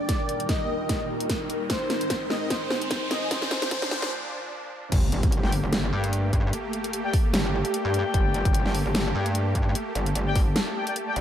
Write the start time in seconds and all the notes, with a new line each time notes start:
Already playing: A#4 D5 G5, riser
0.09 D#2 A#2 G3 D#4, kick, snare, closed hi-hat
0.29 closed hi-hat
0.40 closed hi-hat
0.49 D#5, kick, snare, closed hi-hat
0.89 kick, snare, closed hi-hat
1.20 closed hi-hat
1.30 kick, snare, closed hi-hat
1.50 closed hi-hat
1.70 G#2 D#3 C4 C5, kick, snare, closed hi-hat
1.90 snare, closed hi-hat
2.01 closed hi-hat
2.10 kick, snare, closed hi-hat
2.30 D#5, snare
2.37 C5
2.43 G#5
2.50 C5, kick, snare, closed hi-hat
2.71 snare
2.82 closed hi-hat
2.91 kick, snare, closed hi-hat
3.11 D#5, snare, closed hi-hat
3.31 A#2 F3 D4 C5, kick, snare, closed hi-hat
3.42 snare
3.51 snare, closed hi-hat
3.62 snare, closed hi-hat
3.71 C5, kick, snare, closed hi-hat
3.82 snare
3.91 snare
4.02 snare
4.92 G1 A3 A#3 G4, kick, closed hi-hat, crash, impact
5.12 closed hi-hat
5.23 G1, kick, closed hi-hat
5.32 closed hi-hat
5.43 G1 G4 D5 G5, snare
5.52 open hi-hat
5.63 G1
5.73 snare, closed hi-hat
5.86 A5
5.93 G2 G4 D5 G5
6.04 closed hi-hat
6.13 closed hi-hat
6.33 G2, kick, closed hi-hat
6.53 closed hi-hat
6.73 closed hi-hat
6.84 closed hi-hat
6.93 closed hi-hat
7.04 G4 D5 G5
7.14 kick, open hi-hat
7.34 G1, snare, closed hi-hat
7.65 G4 D5 G5, closed hi-hat
7.74 closed hi-hat
7.85 G2
7.94 closed hi-hat
8.14 G1, kick, closed hi-hat
8.34 closed hi-hat
8.45 G1, kick, closed hi-hat
8.54 closed hi-hat
8.65 G1 G4 D5 G5, snare
8.75 open hi-hat
8.86 G1
8.95 snare, closed hi-hat
9.15 G2 G4 D5 G5
9.26 closed hi-hat
9.35 closed hi-hat
9.55 G2, kick, closed hi-hat
9.75 closed hi-hat
9.95 G1, closed hi-hat
10.06 closed hi-hat
10.15 G1, closed hi-hat
10.27 G4 D5 G5
10.36 kick, open hi-hat
10.56 snare, closed hi-hat
10.76 G4 D5 G5
10.87 G4 D5 G5, closed hi-hat
10.96 closed hi-hat
11.07 G4 D5 G5
11.16 G1, closed hi-hat